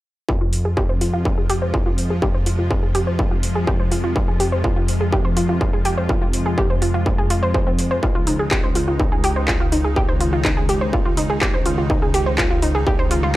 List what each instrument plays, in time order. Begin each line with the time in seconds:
0.29 detuned saw bass F2, ambient pad C3 F3 G#3 F4, synth arpeggio sound F4, kick
0.41 synth arpeggio sound F4
0.53 open hi-hat
0.65 synth arpeggio sound G#4
0.77 synth arpeggio sound G4, kick
0.89 synth arpeggio sound C5
1.01 synth arpeggio sound F4, open hi-hat
1.13 synth arpeggio sound F4
1.25 kick
1.38 synth arpeggio sound G#4
1.50 synth arpeggio sound G4, open hi-hat
1.62 synth arpeggio sound C5
1.74 synth arpeggio sound F4, kick
1.86 synth arpeggio sound F4
1.98 open hi-hat
2.10 synth arpeggio sound G#4
2.22 synth arpeggio sound G4, kick
2.34 synth arpeggio sound C5
2.46 synth arpeggio sound F4, open hi-hat
2.59 synth arpeggio sound F4
2.71 kick
2.83 synth arpeggio sound G#4
2.95 synth arpeggio sound G4, open hi-hat
3.07 synth arpeggio sound C5
3.19 synth arpeggio sound F4, kick
3.31 synth arpeggio sound F4
3.43 open hi-hat
3.55 synth arpeggio sound G#4
3.67 synth arpeggio sound G4, kick
3.80 synth arpeggio sound C5
3.91 synth arpeggio sound F4, open hi-hat
4.04 synth arpeggio sound F4
4.16 kick
4.28 synth arpeggio sound G#4
4.40 synth arpeggio sound G4, open hi-hat
4.52 synth arpeggio sound C5
4.64 synth arpeggio sound F4, kick
4.76 synth arpeggio sound F4
4.88 open hi-hat
5.01 synth arpeggio sound G#4
5.12 synth arpeggio sound G4, kick
5.25 synth arpeggio sound C5
5.37 synth arpeggio sound F4, open hi-hat
5.49 synth arpeggio sound F4
5.61 kick
5.73 synth arpeggio sound G#4
5.85 synth arpeggio sound G4, open hi-hat
5.98 synth arpeggio sound C5
6.09 synth arpeggio sound F4, kick
6.22 synth arpeggio sound F4
6.33 open hi-hat
6.46 synth arpeggio sound G#4
6.58 synth arpeggio sound G4, kick
6.70 synth arpeggio sound C5
6.82 synth arpeggio sound F4, open hi-hat
6.94 synth arpeggio sound F4
7.06 kick
7.18 synth arpeggio sound G#4
7.30 synth arpeggio sound F4, open hi-hat
7.43 synth arpeggio sound C5
7.54 synth arpeggio sound C5, kick
7.67 synth arpeggio sound C4
7.79 open hi-hat
7.91 synth arpeggio sound C5
8.03 detuned saw bass C#2, ambient pad C#3 D#3 D#4, synth arpeggio sound F4, kick
8.15 synth arpeggio sound F4
8.27 synth arpeggio sound D#4, open hi-hat
8.39 synth arpeggio sound G#4
8.51 synth arpeggio sound G4, kick, clap
8.64 synth arpeggio sound C5
8.75 synth arpeggio sound F4, open hi-hat
8.88 synth arpeggio sound F4
9.00 synth arpeggio sound D#4, kick
9.12 synth arpeggio sound G#4
9.24 synth arpeggio sound G4, open hi-hat
9.36 synth arpeggio sound C5
9.48 synth arpeggio sound F4, kick, clap
9.60 synth arpeggio sound F4
9.72 synth arpeggio sound D#4, open hi-hat
9.84 synth arpeggio sound G#4
9.96 synth arpeggio sound G4, kick
10.09 synth arpeggio sound C5
10.21 synth arpeggio sound F4, open hi-hat
10.33 synth arpeggio sound F4
10.45 synth arpeggio sound D#4, kick, clap
10.57 synth arpeggio sound G#4
10.69 synth arpeggio sound G4, open hi-hat
10.81 synth arpeggio sound C5
10.93 synth arpeggio sound F4, kick
11.05 synth arpeggio sound F4
11.17 synth arpeggio sound D#4, open hi-hat
11.30 synth arpeggio sound G#4
11.41 synth arpeggio sound G4, kick, clap
11.54 synth arpeggio sound C5
11.66 synth arpeggio sound F4, open hi-hat
11.78 synth arpeggio sound F4
11.90 ambient pad G3, synth arpeggio sound D#4, kick
12.02 synth arpeggio sound G#4
12.14 synth arpeggio sound G4, open hi-hat
12.26 synth arpeggio sound C5
12.38 synth arpeggio sound F4, kick, clap
12.50 synth arpeggio sound F4
12.62 synth arpeggio sound D#4, open hi-hat
12.75 synth arpeggio sound G#4
12.87 synth arpeggio sound G4, kick
12.99 synth arpeggio sound C5
13.11 synth arpeggio sound F4, open hi-hat
13.23 synth arpeggio sound F4